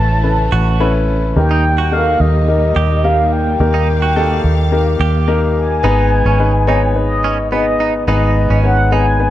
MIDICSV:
0, 0, Header, 1, 6, 480
1, 0, Start_track
1, 0, Tempo, 559701
1, 1169, Time_signature, 4, 2, 24, 8
1, 7977, End_track
2, 0, Start_track
2, 0, Title_t, "Soft synth lead"
2, 0, Program_c, 0, 80
2, 0, Note_on_c, 0, 81, 101
2, 657, Note_off_c, 0, 81, 0
2, 1175, Note_on_c, 0, 79, 102
2, 1656, Note_on_c, 0, 77, 110
2, 1669, Note_off_c, 0, 79, 0
2, 1890, Note_on_c, 0, 75, 96
2, 1903, Note_off_c, 0, 77, 0
2, 2614, Note_on_c, 0, 77, 95
2, 2627, Note_off_c, 0, 75, 0
2, 2847, Note_off_c, 0, 77, 0
2, 2852, Note_on_c, 0, 79, 90
2, 4495, Note_off_c, 0, 79, 0
2, 4770, Note_on_c, 0, 80, 94
2, 5934, Note_off_c, 0, 80, 0
2, 5977, Note_on_c, 0, 75, 92
2, 6419, Note_off_c, 0, 75, 0
2, 6463, Note_on_c, 0, 75, 93
2, 6902, Note_off_c, 0, 75, 0
2, 6940, Note_on_c, 0, 75, 85
2, 7381, Note_off_c, 0, 75, 0
2, 7420, Note_on_c, 0, 78, 106
2, 7638, Note_off_c, 0, 78, 0
2, 7661, Note_on_c, 0, 80, 105
2, 7977, Note_off_c, 0, 80, 0
2, 7977, End_track
3, 0, Start_track
3, 0, Title_t, "Grand piano"
3, 0, Program_c, 1, 0
3, 0, Control_c, 1, 64, 127
3, 0, Note_on_c, 1, 45, 57
3, 0, Note_on_c, 1, 61, 61
3, 0, Note_on_c, 1, 64, 56
3, 0, Note_on_c, 1, 69, 56
3, 0, Note_on_c, 1, 71, 74
3, 0, Note_on_c, 1, 73, 75
3, 201, Note_off_c, 1, 64, 0
3, 201, Note_on_c, 1, 64, 54
3, 203, Note_off_c, 1, 61, 0
3, 203, Note_off_c, 1, 71, 0
3, 203, Note_on_c, 1, 61, 59
3, 203, Note_on_c, 1, 71, 72
3, 204, Note_off_c, 1, 69, 0
3, 204, Note_on_c, 1, 69, 58
3, 544, Note_off_c, 1, 61, 0
3, 544, Note_off_c, 1, 64, 0
3, 544, Note_off_c, 1, 71, 0
3, 545, Note_off_c, 1, 69, 0
3, 687, Note_on_c, 1, 61, 90
3, 689, Note_on_c, 1, 64, 78
3, 690, Note_on_c, 1, 69, 75
3, 690, Note_on_c, 1, 71, 98
3, 1026, Note_off_c, 1, 61, 0
3, 1027, Note_off_c, 1, 64, 0
3, 1028, Note_off_c, 1, 69, 0
3, 1028, Note_off_c, 1, 71, 0
3, 1167, Note_on_c, 1, 63, 66
3, 1168, Note_on_c, 1, 58, 65
3, 1168, Note_on_c, 1, 67, 66
3, 1169, Note_on_c, 1, 51, 64
3, 1171, Note_on_c, 1, 70, 73
3, 1181, Control_c, 1, 64, 0
3, 1182, Note_off_c, 1, 45, 0
3, 1187, Note_off_c, 1, 73, 0
3, 1346, Control_c, 1, 64, 127
3, 1507, Note_off_c, 1, 58, 0
3, 1507, Note_off_c, 1, 63, 0
3, 1507, Note_off_c, 1, 67, 0
3, 1508, Note_off_c, 1, 70, 0
3, 1644, Note_on_c, 1, 63, 66
3, 1645, Note_on_c, 1, 58, 66
3, 1647, Note_on_c, 1, 67, 63
3, 1647, Note_on_c, 1, 69, 60
3, 1702, Note_on_c, 1, 70, 68
3, 1704, Note_off_c, 1, 69, 0
3, 1854, Note_off_c, 1, 51, 0
3, 1985, Note_off_c, 1, 58, 0
3, 1985, Note_off_c, 1, 63, 0
3, 1986, Note_off_c, 1, 67, 0
3, 2013, Note_off_c, 1, 70, 0
3, 2125, Note_on_c, 1, 58, 57
3, 2128, Note_on_c, 1, 67, 60
3, 2128, Note_on_c, 1, 70, 65
3, 2129, Note_on_c, 1, 63, 58
3, 2465, Note_off_c, 1, 58, 0
3, 2467, Note_off_c, 1, 63, 0
3, 2467, Note_off_c, 1, 67, 0
3, 2467, Note_off_c, 1, 70, 0
3, 2607, Note_on_c, 1, 58, 75
3, 2607, Note_on_c, 1, 63, 64
3, 2610, Note_on_c, 1, 70, 83
3, 2611, Note_on_c, 1, 67, 69
3, 2946, Note_off_c, 1, 58, 0
3, 2946, Note_off_c, 1, 63, 0
3, 2947, Note_off_c, 1, 70, 0
3, 2948, Note_off_c, 1, 67, 0
3, 3088, Note_on_c, 1, 63, 65
3, 3089, Note_on_c, 1, 51, 62
3, 3090, Note_on_c, 1, 58, 71
3, 3090, Note_on_c, 1, 67, 65
3, 3093, Note_on_c, 1, 70, 85
3, 3427, Note_off_c, 1, 58, 0
3, 3427, Note_off_c, 1, 63, 0
3, 3427, Note_off_c, 1, 67, 0
3, 3429, Note_off_c, 1, 70, 0
3, 3569, Note_on_c, 1, 58, 83
3, 3569, Note_on_c, 1, 67, 76
3, 3570, Note_on_c, 1, 63, 70
3, 3570, Note_on_c, 1, 69, 95
3, 3774, Note_off_c, 1, 51, 0
3, 3907, Note_off_c, 1, 58, 0
3, 3907, Note_off_c, 1, 67, 0
3, 3908, Note_off_c, 1, 63, 0
3, 3908, Note_off_c, 1, 69, 0
3, 4046, Note_on_c, 1, 63, 67
3, 4048, Note_on_c, 1, 58, 78
3, 4048, Note_on_c, 1, 67, 71
3, 4051, Note_on_c, 1, 70, 80
3, 4386, Note_off_c, 1, 58, 0
3, 4386, Note_off_c, 1, 63, 0
3, 4387, Note_off_c, 1, 67, 0
3, 4388, Note_off_c, 1, 70, 0
3, 4525, Note_on_c, 1, 58, 89
3, 4526, Note_on_c, 1, 70, 90
3, 4527, Note_on_c, 1, 63, 77
3, 4528, Note_on_c, 1, 67, 86
3, 4865, Note_off_c, 1, 58, 0
3, 4866, Note_off_c, 1, 63, 0
3, 4866, Note_off_c, 1, 67, 0
3, 4866, Note_off_c, 1, 70, 0
3, 5005, Note_on_c, 1, 59, 100
3, 5007, Note_on_c, 1, 44, 59
3, 5008, Note_on_c, 1, 63, 80
3, 5008, Note_on_c, 1, 71, 100
3, 5011, Note_on_c, 1, 68, 79
3, 5020, Control_c, 1, 64, 0
3, 5173, Control_c, 1, 64, 127
3, 5345, Note_off_c, 1, 59, 0
3, 5346, Note_off_c, 1, 63, 0
3, 5347, Note_off_c, 1, 71, 0
3, 5348, Note_off_c, 1, 68, 0
3, 5486, Note_on_c, 1, 59, 71
3, 5487, Note_on_c, 1, 68, 67
3, 5488, Note_on_c, 1, 63, 76
3, 5489, Note_on_c, 1, 71, 85
3, 5656, Note_off_c, 1, 59, 0
3, 5656, Note_off_c, 1, 68, 0
3, 5657, Note_off_c, 1, 63, 0
3, 5657, Note_off_c, 1, 71, 0
3, 5693, Note_off_c, 1, 44, 0
3, 5722, Note_on_c, 1, 59, 81
3, 5723, Note_on_c, 1, 68, 74
3, 5724, Note_on_c, 1, 63, 73
3, 5724, Note_on_c, 1, 73, 92
3, 5894, Note_off_c, 1, 59, 0
3, 5895, Note_off_c, 1, 63, 0
3, 5895, Note_off_c, 1, 68, 0
3, 5895, Note_off_c, 1, 73, 0
3, 5963, Note_on_c, 1, 59, 66
3, 5964, Note_on_c, 1, 63, 58
3, 5966, Note_on_c, 1, 68, 59
3, 5966, Note_on_c, 1, 71, 68
3, 6304, Note_off_c, 1, 59, 0
3, 6304, Note_off_c, 1, 63, 0
3, 6305, Note_off_c, 1, 68, 0
3, 6305, Note_off_c, 1, 71, 0
3, 6449, Note_on_c, 1, 59, 75
3, 6449, Note_on_c, 1, 63, 66
3, 6450, Note_on_c, 1, 68, 69
3, 6451, Note_on_c, 1, 71, 78
3, 6787, Note_off_c, 1, 59, 0
3, 6787, Note_off_c, 1, 63, 0
3, 6787, Note_off_c, 1, 68, 0
3, 6788, Note_off_c, 1, 71, 0
3, 6926, Note_on_c, 1, 59, 92
3, 6926, Note_on_c, 1, 63, 88
3, 6927, Note_on_c, 1, 44, 64
3, 6928, Note_on_c, 1, 68, 92
3, 6930, Note_on_c, 1, 71, 105
3, 7265, Note_off_c, 1, 63, 0
3, 7266, Note_off_c, 1, 59, 0
3, 7266, Note_off_c, 1, 68, 0
3, 7267, Note_off_c, 1, 71, 0
3, 7407, Note_on_c, 1, 59, 72
3, 7407, Note_on_c, 1, 63, 69
3, 7409, Note_on_c, 1, 68, 64
3, 7410, Note_on_c, 1, 73, 77
3, 7577, Note_off_c, 1, 59, 0
3, 7577, Note_off_c, 1, 63, 0
3, 7578, Note_off_c, 1, 68, 0
3, 7578, Note_off_c, 1, 73, 0
3, 7613, Note_off_c, 1, 44, 0
3, 7648, Note_on_c, 1, 63, 65
3, 7650, Note_on_c, 1, 59, 72
3, 7650, Note_on_c, 1, 68, 68
3, 7651, Note_on_c, 1, 71, 84
3, 7817, Note_off_c, 1, 63, 0
3, 7818, Note_off_c, 1, 59, 0
3, 7818, Note_off_c, 1, 68, 0
3, 7818, Note_off_c, 1, 71, 0
3, 7887, Note_on_c, 1, 59, 69
3, 7888, Note_on_c, 1, 63, 58
3, 7891, Note_on_c, 1, 68, 62
3, 7891, Note_on_c, 1, 71, 72
3, 7977, Note_off_c, 1, 59, 0
3, 7977, Note_off_c, 1, 63, 0
3, 7977, Note_off_c, 1, 68, 0
3, 7977, Note_off_c, 1, 71, 0
3, 7977, End_track
4, 0, Start_track
4, 0, Title_t, "Clean electric guitar"
4, 0, Program_c, 2, 27
4, 448, Note_on_c, 2, 66, 83
4, 787, Note_off_c, 2, 66, 0
4, 1293, Note_on_c, 2, 63, 72
4, 1405, Note_off_c, 2, 63, 0
4, 1529, Note_on_c, 2, 66, 70
4, 1867, Note_off_c, 2, 66, 0
4, 2368, Note_on_c, 2, 67, 80
4, 2707, Note_off_c, 2, 67, 0
4, 3207, Note_on_c, 2, 63, 80
4, 3322, Note_off_c, 2, 63, 0
4, 3450, Note_on_c, 2, 66, 71
4, 3787, Note_off_c, 2, 66, 0
4, 4293, Note_on_c, 2, 67, 84
4, 4629, Note_off_c, 2, 67, 0
4, 5009, Note_on_c, 2, 63, 96
4, 5236, Note_off_c, 2, 63, 0
4, 5369, Note_on_c, 2, 61, 62
4, 5596, Note_off_c, 2, 61, 0
4, 5733, Note_on_c, 2, 63, 75
4, 5844, Note_off_c, 2, 63, 0
4, 6212, Note_on_c, 2, 61, 87
4, 6324, Note_off_c, 2, 61, 0
4, 6451, Note_on_c, 2, 59, 72
4, 6563, Note_off_c, 2, 59, 0
4, 6691, Note_on_c, 2, 63, 75
4, 6803, Note_off_c, 2, 63, 0
4, 6933, Note_on_c, 2, 63, 104
4, 7158, Note_off_c, 2, 63, 0
4, 7293, Note_on_c, 2, 61, 64
4, 7518, Note_off_c, 2, 61, 0
4, 7653, Note_on_c, 2, 63, 77
4, 7765, Note_off_c, 2, 63, 0
4, 7977, End_track
5, 0, Start_track
5, 0, Title_t, "String section"
5, 0, Program_c, 3, 48
5, 0, Note_on_c, 3, 49, 70
5, 0, Note_on_c, 3, 52, 64
5, 0, Note_on_c, 3, 57, 60
5, 0, Note_on_c, 3, 61, 66
5, 0, Note_on_c, 3, 64, 69
5, 1135, Note_off_c, 3, 64, 0
5, 1136, Note_off_c, 3, 49, 0
5, 1136, Note_off_c, 3, 57, 0
5, 1138, Note_off_c, 3, 52, 0
5, 1150, Note_off_c, 3, 61, 0
5, 1168, Note_on_c, 3, 55, 70
5, 1168, Note_on_c, 3, 63, 65
5, 1169, Note_on_c, 3, 51, 63
5, 1170, Note_on_c, 3, 46, 73
5, 3069, Note_off_c, 3, 63, 0
5, 3083, Note_on_c, 3, 77, 64
5, 4973, Note_off_c, 3, 55, 0
5, 4974, Note_off_c, 3, 46, 0
5, 4974, Note_off_c, 3, 51, 0
5, 4986, Note_off_c, 3, 77, 0
5, 7977, End_track
6, 0, Start_track
6, 0, Title_t, "Fingered electric bass"
6, 0, Program_c, 4, 33
6, 0, Note_on_c, 4, 33, 81
6, 415, Note_off_c, 4, 33, 0
6, 449, Note_on_c, 4, 33, 98
6, 1134, Note_off_c, 4, 33, 0
6, 1168, Note_on_c, 4, 39, 87
6, 1854, Note_off_c, 4, 39, 0
6, 1886, Note_on_c, 4, 39, 84
6, 2334, Note_off_c, 4, 39, 0
6, 2368, Note_on_c, 4, 39, 83
6, 3054, Note_off_c, 4, 39, 0
6, 3088, Note_on_c, 4, 39, 97
6, 3773, Note_off_c, 4, 39, 0
6, 3809, Note_on_c, 4, 39, 83
6, 4255, Note_off_c, 4, 39, 0
6, 4285, Note_on_c, 4, 39, 88
6, 4972, Note_off_c, 4, 39, 0
6, 5004, Note_on_c, 4, 32, 97
6, 5340, Note_off_c, 4, 32, 0
6, 5362, Note_on_c, 4, 32, 89
6, 6891, Note_off_c, 4, 32, 0
6, 6927, Note_on_c, 4, 32, 105
6, 7262, Note_off_c, 4, 32, 0
6, 7289, Note_on_c, 4, 32, 98
6, 7977, Note_off_c, 4, 32, 0
6, 7977, End_track
0, 0, End_of_file